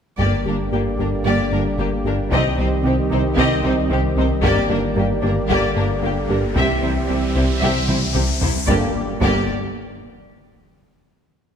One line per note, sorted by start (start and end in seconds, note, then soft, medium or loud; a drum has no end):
0.18 0.26 G1 soft
0.18 0.29 G1 medium
0.18 2.33 G1 medium
0.18 0.26 G2 medium
0.18 0.35 G2 medium
0.18 2.28 D3 soft
0.18 0.35 G3 medium
0.18 6.53 G3 medium
0.18 2.27 A#3 soft
0.18 2.28 A#3 medium
0.18 0.44 A#3 medium
0.18 0.44 G4 soft
0.18 6.53 G4 medium
0.18 0.43 D5 soft
0.18 2.28 D5 medium
0.18 taiko medium
0.45 0.56 G1 soft
0.45 0.53 G1 soft
0.45 0.53 G2 soft
0.45 0.62 G2 soft
0.45 0.55 A#3 soft
0.45 0.55 D4 soft
0.45 0.62 G4 medium
0.45 0.55 A#4 soft
0.72 0.82 G1 soft
0.72 0.80 G1 soft
0.72 0.80 G2 soft
0.72 0.88 G2 medium
0.72 0.81 A#3 soft
0.72 0.82 A#3 soft
0.72 0.88 G4 soft
0.72 0.80 G4 soft
0.98 1.09 G1 soft
0.98 1.07 G1 soft
0.98 1.06 G2 soft
0.98 1.15 G2 medium
0.98 1.07 A#3 soft
0.98 1.08 D4 soft
0.98 1.15 G4 medium
0.98 1.08 A#4 soft
0.98 taiko soft
1.25 1.36 G1 medium
1.25 1.33 G1 soft
1.25 1.33 G2 medium
1.25 1.41 G2 medium
1.25 1.42 G3 medium
1.25 1.50 A#3 soft
1.25 1.50 G4 medium
1.25 1.50 D5 medium
1.51 1.62 G1 soft
1.51 1.60 G1 soft
1.51 1.60 G2 soft
1.51 1.68 G2 medium
1.51 1.68 A#3 soft
1.51 1.61 A#3 soft
1.51 1.61 D4 soft
1.51 1.61 A#4 soft
1.77 1.88 G1 soft
1.77 1.87 G1 soft
1.77 1.94 G2 medium
1.77 1.86 G2 soft
1.77 1.87 A#3 soft
1.77 1.88 A#3 soft
1.77 1.87 G4 soft
1.77 1.95 G4 medium
2.04 2.15 G1 soft
2.04 2.14 G1 soft
2.04 2.20 G2 medium
2.04 2.12 G2 soft
2.04 2.13 A#3 soft
2.04 2.15 D4 soft
2.04 2.21 G4 medium
2.04 2.14 A#4 soft
2.31 2.42 C2 medium
2.31 2.47 C2 medium
2.31 4.45 C2 medium
2.31 2.40 C2 medium
2.31 2.39 C3 medium
2.31 2.48 C3 medium
2.31 5.46 D#3 medium
2.31 4.44 C4 medium
2.31 2.56 C4 medium
2.31 2.57 G4 medium
2.31 4.44 D#5 medium
2.31 2.57 D#5 medium
2.31 taiko medium
2.57 2.74 C2 medium
2.57 2.69 C2 soft
2.57 2.66 C2 soft
2.57 2.65 C3 soft
2.57 2.66 C4 soft
2.57 2.74 C4 medium
2.57 2.66 D#4 soft
2.57 2.68 C5 soft
2.83 3.00 C2 medium
2.83 2.95 C2 soft
2.83 2.92 C2 soft
2.83 2.91 C3 soft
2.83 3.01 C4 medium
2.83 2.94 C4 medium
2.83 2.94 C4 soft
2.83 2.95 G4 soft
3.10 3.21 C2 medium
3.10 3.19 C2 medium
3.10 3.27 C2 medium
3.10 3.18 C3 soft
3.10 3.27 C4 medium
3.10 3.20 C4 medium
3.10 3.20 D#4 soft
3.10 3.21 C5 soft
3.36 3.47 C2 medium
3.36 3.53 C2 medium
3.36 3.46 C2 medium
3.36 3.45 C3 medium
3.36 3.54 C3 medium
3.36 3.62 C4 medium
3.36 3.62 G4 medium
3.36 3.64 D#5 medium
3.36 taiko medium
3.63 3.79 C2 medium
3.63 3.74 C2 soft
3.63 3.72 C2 soft
3.63 3.71 C3 soft
3.63 3.80 D#3 medium
3.63 3.72 C4 medium
3.63 3.72 D#4 medium
3.63 3.74 C5 soft
3.89 4.06 C2 medium
3.89 3.98 C2 soft
3.89 4.01 C2 soft
3.89 3.98 C3 medium
3.89 3.98 C4 medium
3.89 4.07 C4 medium
3.89 4.01 G4 medium
4.16 4.32 C2 medium
4.16 4.27 C2 medium
4.16 4.25 C2 soft
4.16 4.24 C3 medium
4.16 4.33 C4 medium
4.16 4.25 C4 medium
4.16 4.25 D#4 medium
4.16 4.28 C5 medium
4.43 4.51 G1 medium
4.43 4.54 G1 medium
4.43 6.58 G1 medium
4.43 4.59 G2 medium
4.43 4.51 G2 medium
4.43 4.59 G3 medium
4.43 4.68 A#3 medium
4.43 6.52 A#3 medium
4.43 6.56 A#3 medium
4.43 4.69 G4 medium
4.43 6.56 D5 medium
4.43 4.70 D5 medium
4.43 taiko loud
4.43 riser medium
4.69 4.80 G1 medium
4.69 4.78 G1 soft
4.69 4.85 G2 medium
4.69 4.77 G2 medium
4.69 4.78 A#3 soft
4.69 4.78 D4 soft
4.69 4.86 G4 medium
4.69 4.81 A#4 medium
4.96 5.04 G1 medium
4.96 5.07 G1 medium
4.96 5.04 G2 medium
4.96 5.12 G2 medium
4.96 5.04 A#3 soft
4.96 5.13 G4 medium
4.96 5.07 G4 soft
5.22 5.34 G1 medium
5.22 5.31 G1 medium
5.22 5.31 G2 soft
5.22 5.39 G2 medium
5.22 5.30 A#3 soft
5.22 5.30 D4 medium
5.22 5.39 G4 medium
5.26 5.34 A#4 soft
5.48 5.60 G1 medium
5.48 5.58 G1 medium
5.48 5.57 G2 medium
5.48 5.66 G2 medium
5.48 6.56 D3 medium
5.48 5.66 G3 medium
5.48 5.74 A#3 medium
5.48 5.73 G4 medium
5.48 taiko medium
5.52 5.76 D5 medium
5.75 5.84 G1 soft
5.75 5.87 G1 soft
5.75 5.84 G2 soft
5.75 5.92 G2 medium
5.75 5.84 A#3 soft
5.75 5.93 A#3 medium
5.75 5.83 D4 medium
5.75 5.86 A#4 medium
6.01 6.10 G1 soft
6.01 6.13 G1 soft
6.01 6.18 G2 medium
6.01 6.10 G2 soft
6.01 6.09 A#3 soft
6.01 6.11 A#3 soft
6.01 6.19 G4 medium
6.01 6.13 G4 soft
6.29 6.37 G1 soft
6.29 6.40 G1 soft
6.29 6.37 G2 soft
6.29 6.45 G2 medium
6.29 6.38 A#3 soft
6.29 6.37 D4 soft
6.29 6.46 G4 medium
6.29 6.39 A#4 soft
6.55 6.64 C2 medium
6.55 6.66 C2 medium
6.55 6.72 C2 medium
6.55 8.68 C2 medium
6.55 6.63 C3 medium
6.55 6.72 C3 medium
6.55 8.42 E3 soft
6.55 8.42 G3 medium
6.55 8.65 G3 medium
6.55 6.81 C4 medium
6.55 8.69 C4 medium
6.55 6.81 G4 soft
6.55 8.65 G4 medium
6.55 8.69 E5 medium
6.55 6.81 E5 medium
6.55 taiko medium
6.82 6.93 C2 soft
6.82 6.90 C2 soft
6.82 6.98 C2 medium
6.82 6.90 C3 soft
6.82 6.91 C4 soft
6.82 6.99 C4 medium
6.82 6.90 E4 soft
6.82 6.90 C5 soft
7.08 7.19 C2 soft
7.08 7.17 C2 soft
7.08 7.25 C2 medium
7.08 7.17 C3 soft
7.08 7.17 C4 soft
7.08 7.18 C4 soft
7.08 7.26 C4 medium
7.08 7.16 G4 soft
7.35 7.46 C2 soft
7.35 7.43 C2 soft
7.35 7.52 C2 medium
7.35 7.44 C3 soft
7.35 7.44 C4 soft
7.35 7.52 C4 medium
7.35 7.44 E4 soft
7.35 7.43 C5 soft
7.60 7.72 C2 medium
7.60 7.69 C2 medium
7.60 7.79 C2 medium
7.60 7.70 C3 medium
7.60 7.79 C3 medium
7.60 7.87 C4 medium
7.60 7.87 G4 medium
7.60 7.86 E5 soft
7.60 taiko medium
7.88 7.98 C2 soft
7.88 7.96 C2 soft
7.88 8.05 C2 medium
7.88 7.96 C3 soft
7.88 8.05 E3 medium
7.88 7.96 C4 soft
7.88 7.97 E4 soft
7.88 7.96 C5 soft
7.88 taiko mid medium
8.13 8.25 C2 soft
8.13 8.23 C2 soft
8.13 8.32 C2 medium
8.13 8.22 C3 soft
8.13 8.24 C4 soft
8.13 8.32 C4 medium
8.13 8.21 G4 soft
8.13 taiko mid medium
8.41 8.52 C2 soft
8.41 8.50 C2 soft
8.41 8.58 C2 medium
8.41 8.49 C3 soft
8.41 8.58 C4 medium
8.41 8.50 C4 soft
8.41 8.50 E4 soft
8.41 8.49 C5 soft
8.41 taiko low medium
8.67 8.79 G1 medium
8.67 8.83 G1 medium
8.67 8.83 G2 medium
8.67 8.91 D3 medium
8.67 8.98 G3 medium
8.67 8.98 A#3 medium
8.67 8.91 A#3 medium
8.67 8.84 A#3 medium
8.67 8.98 G4 medium
8.67 8.84 G4 medium
8.67 8.83 D5 medium
8.67 8.98 D5 medium
8.67 taiko loud
8.67 impact medium
9.20 9.43 G1 medium
9.20 9.51 G1 medium
9.20 9.51 G2 medium
9.20 9.51 A#3 medium
9.20 9.52 G4 medium
9.20 9.52 D5 medium
9.20 taiko loud